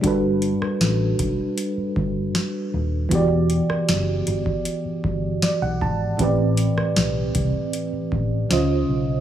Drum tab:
HH |x-x-x-x-x---x---|x-x-x-x-x---x---|x-x-x-x-x---x---|
SD |---ro-------o---|---ro-------o---|---ro-------o---|
BD |o-----o---o-----|o------o--o---o-|o-----o---o-----|